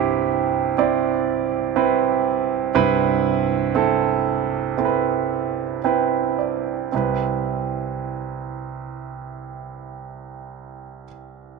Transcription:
0.00 2.70 C2 medium
0.00 2.71 G2 medium
0.00 0.78 C4 medium
0.00 0.78 E4 medium
0.00 0.73 G4 medium
0.00 1.76 B4 loud
0.78 1.71 C4 medium
0.78 1.71 E4 medium
0.78 1.71 D5 medium
1.76 2.70 C4 medium
1.76 2.70 E4 medium
1.76 2.70 B4 medium
2.75 6.88 C2 medium
2.75 6.89 G2 medium
2.75 3.70 C4 medium
2.75 3.70 E4 medium
2.75 3.70 B4 loud
3.75 4.72 C4 medium
3.75 4.73 E4 medium
3.75 4.73 A4 medium
4.78 5.78 C4 medium
4.78 5.79 E4 medium
4.78 4.85 A4 medium
4.85 5.82 B4 medium
5.84 6.87 C4 medium
5.84 6.87 E4 medium
5.84 6.88 B4 medium
5.84 6.35 G5 soft
6.38 6.89 D5 soft
6.92 11.05 C2 medium
6.92 11.03 C4 medium
6.92 11.05 E4 soft
6.92 11.07 B4 medium

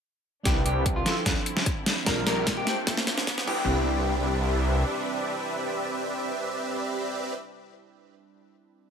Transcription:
0.43 0.64 C2 medium
0.43 1.05 C3 medium
0.43 1.05 E3 medium
0.43 1.01 G3 medium
0.43 1.02 C4 medium
0.43 0.63 C4 medium
0.43 1.02 D4 medium
0.43 1.05 D4 medium
0.43 1.03 E4 medium
0.43 0.58 G4 medium
0.43 0.63 G4 medium
0.43 1.05 B4 medium
0.43 0.63 B4 medium
0.43 0.63 D5 medium
0.43 0.63 E5 loud
0.43 kick loud
0.43 snare soft
0.43 closed hi-hat medium
0.43 riser medium
0.47 1.03 B4 medium
0.65 1.03 C2 medium
0.65 1.05 C4 medium
0.65 0.83 G4 medium
0.65 1.05 G4 medium
0.65 1.05 B4 medium
0.65 1.05 D5 medium
0.65 1.05 A5 loud
0.65 closed hi-hat medium
0.86 kick loud
0.86 closed hi-hat medium
0.96 1.14 F4 medium
1.04 2.06 D3 medium
1.04 2.02 F3 medium
1.04 2.06 F3 medium
1.04 2.02 C4 medium
1.04 2.06 C4 medium
1.04 2.03 D4 medium
1.04 2.06 E4 medium
1.04 2.03 E4 medium
1.04 2.04 A4 loud
1.04 snare medium
1.04 closed hi-hat medium
1.26 1.34 D2 medium
1.26 1.36 C4 medium
1.26 1.36 F4 medium
1.26 1.36 A4 medium
1.26 1.36 D5 medium
1.26 1.36 F5 loud
1.26 kick loud
1.26 snare medium
1.26 closed hi-hat medium
1.46 closed hi-hat medium
1.57 snare medium
1.66 kick loud
1.66 closed hi-hat medium
1.86 snare medium
1.86 closed hi-hat medium
2.04 2.25 A#1 loud
2.04 3.46 C3 medium
2.04 2.62 G3 medium
2.04 2.66 G3 medium
2.04 2.66 A#3 medium
2.04 2.63 C4 medium
2.04 2.24 C4 medium
2.04 2.63 D4 medium
2.04 3.46 D4 medium
2.04 2.64 F4 medium
2.04 2.24 G4 medium
2.04 2.19 A#4 loud
2.04 2.24 A#4 medium
2.04 2.24 D5 medium
2.04 2.24 F5 loud
2.04 kick loud
2.04 snare medium
2.04 closed hi-hat medium
2.08 2.64 A#4 medium
2.27 2.64 A#1 medium
2.27 2.66 C4 medium
2.27 2.66 G4 medium
2.27 2.66 A#4 medium
2.27 2.45 A#4 medium
2.27 2.66 D5 medium
2.27 2.66 A#5 loud
2.27 snare medium
2.27 closed hi-hat medium
2.47 kick loud
2.47 snare medium
2.47 closed hi-hat medium
2.57 2.75 G4 medium
2.65 3.47 F3 medium
2.65 3.47 A3 loud
2.65 3.47 A3 medium
2.65 3.45 C4 medium
2.65 3.46 D4 medium
2.65 3.48 F4 medium
2.65 3.48 C5 loud
2.65 snare medium
2.65 closed hi-hat medium
2.87 2.95 F1 loud
2.87 2.97 C4 medium
2.87 2.97 F4 medium
2.87 2.97 A4 medium
2.87 2.97 D5 medium
2.87 2.97 G5 loud
2.87 kick loud
2.87 snare medium
2.87 closed hi-hat medium
2.98 snare medium
3.07 snare loud
3.07 closed hi-hat medium
3.18 snare medium
3.27 kick loud
3.27 snare loud
3.27 closed hi-hat medium
3.38 snare medium
3.44 4.84 C2 loud
3.44 7.34 C3 medium
3.44 7.34 E3 medium
3.44 7.31 G3 medium
3.44 7.32 C4 medium
3.44 7.34 C4 medium
3.44 7.34 D4 medium
3.44 7.34 D4 loud
3.44 7.34 G4 medium
3.44 7.34 B4 medium
3.44 7.34 D5 medium
3.44 7.34 E5 loud
3.44 kick loud
3.44 crash medium
3.49 7.35 E4 medium
3.49 7.37 B4 loud

